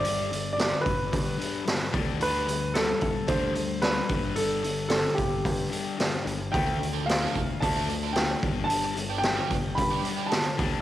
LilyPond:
<<
  \new Staff \with { instrumentName = "Upright piano" } { \time 4/4 \key g \mixolydian \tempo 4 = 111 d''4 d''8 b'2 r8 | b'4 a'4 c''4 b'4 | a'4 a'8 g'2 r8 | g''4 f''4 a''4 g''4 |
a''4 g''4 b''4 a''4 | }
  \new Staff \with { instrumentName = "Overdriven electric guitar" } { \time 4/4 \key g \mixolydian r1 | r1 | r1 | r8. <f a d' a'>16 r16 <f a d' a'>16 r8. <f a d' a'>16 r16 <f a d' a'>16 r4 |
r8. <b d' g'>16 r16 <b d' g'>16 r8. <b d' g'>16 r16 <b d' g'>16 r4 | }
  \new Staff \with { instrumentName = "Distorted electric guitar" } { \clef bass \time 4/4 \key g \mixolydian <g, d g>8 <g, d>8 <g, d>8 <g, d>8 <g, d>8 <g, d g>8 <g, d>8 <d g d'>8 | <d g d'>8 <d g>8 <d g>8 <d g>8 <d g d'>8 <d g>8 <d g>8 <g, d g>8 | <g, d g>8 <g, d>8 <g, d>8 <g, d>8 <g, d>8 <g, d g>8 <g, d>8 <g, d>8 | <d a d'>8 <d a>8 <d a>8 <d a>8 <d a d'>8 <d a>8 <d a>8 <g, d g>8 |
<g, d g>8 <g, d>8 <g, d>8 <g, d>8 <g, d>8 <g, d g>8 <g, d>8 <d g d'>8 | }
  \new Staff \with { instrumentName = "Picked electric bass" } { \clef bass \time 4/4 \key g \mixolydian g,,4. g,,8 g,8 r4 d,8 | d,4. c,16 r16 d,4. g,,8~ | g,,4. g,,8 g,8 r4 g,,8 | d,4. c,16 r16 d,4. g,,8~ |
g,,4. g,,8 g,8 r4 d,8 | }
  \new DrumStaff \with { instrumentName = "Drums" } \drummode { \time 4/4 hho8 hho8 <hho sn>8 <hho bd>8 <hho bd>8 hho8 <hho sn>8 <hho bd>8 | hho8 hho8 <hho sn>8 <hho bd>8 <hho bd>8 hho8 <hho sn>8 <hho bd>8 | hho8 hho8 <hho sn>8 <hho bd>8 <hho bd>8 hho8 <hho sn>8 hho8 | <hho bd>8 hho8 <hho sn>8 <hho bd>8 <hho bd>8 hho8 <hho sn>8 <hho bd>8 |
hho8 hho8 <hho sn>8 <hho bd>8 <hho bd>8 hho8 <hho sn>8 <hho bd>8 | }
>>